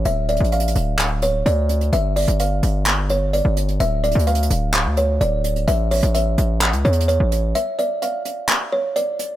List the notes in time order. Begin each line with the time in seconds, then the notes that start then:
0.05 D1 E5, closed hi-hat
0.29 D5, closed hi-hat
0.36 A1, closed hi-hat
0.44 closed hi-hat
0.52 F5, closed hi-hat
0.60 closed hi-hat
0.68 closed hi-hat
0.75 D1, closed hi-hat
0.99 clap, closed hi-hat
1.22 C#5, closed hi-hat
1.46 D2 D5, closed hi-hat
1.69 closed hi-hat
1.81 closed hi-hat
1.93 G1 E5, closed hi-hat
2.16 D5, closed hi-hat, open hi-hat
2.28 G1, closed hi-hat
2.40 F5, closed hi-hat
2.63 G1, closed hi-hat
2.86 clap, closed hi-hat
3.09 C#5, closed hi-hat
3.33 D5, closed hi-hat
3.45 G1
3.57 closed hi-hat
3.69 closed hi-hat
3.80 D1 E5, closed hi-hat
4.04 D5, closed hi-hat
4.11 D2, closed hi-hat
4.19 closed hi-hat
4.27 F5, closed hi-hat
4.35 closed hi-hat
4.43 closed hi-hat
4.50 D1, closed hi-hat
4.74 clap, closed hi-hat
4.86 D2
4.97 C#5, closed hi-hat
5.21 D1 D5, closed hi-hat
5.44 closed hi-hat
5.56 closed hi-hat
5.68 A1 E5, closed hi-hat
5.91 C#5, closed hi-hat, open hi-hat
6.03 A1, closed hi-hat
6.15 E5, closed hi-hat
6.38 A1, closed hi-hat
6.61 clap, closed hi-hat
6.73 C#2, closed hi-hat
6.85 E2 C#5, closed hi-hat
6.93 closed hi-hat
7.00 closed hi-hat
7.08 C#5, closed hi-hat
7.20 A1
7.32 closed hi-hat
7.55 E5, closed hi-hat
7.79 D5, closed hi-hat
8.02 F5, closed hi-hat
8.25 closed hi-hat
8.49 clap, closed hi-hat
8.72 C#5
8.96 D5, closed hi-hat
9.19 closed hi-hat